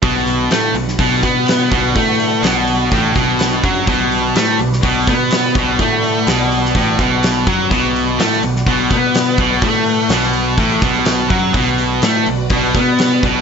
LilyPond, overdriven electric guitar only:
\new Staff \with { instrumentName = "Overdriven electric guitar" } { \clef bass \time 4/4 \key b \minor \tempo 4 = 125 b,4 a8 b,8 b,8 b4 b,8 | a4 b,4 a,8 b,4 fis8 | b,4 a8 b,8 b,8 b4 b,8 | a4 b,4 a,8 b,4 fis8 |
b,4 a8 b,8 b,8 b4 b,8 | a4 b,4 a,8 b,4 fis8 | b,4 a8 b,8 b,8 b4 b,8 | }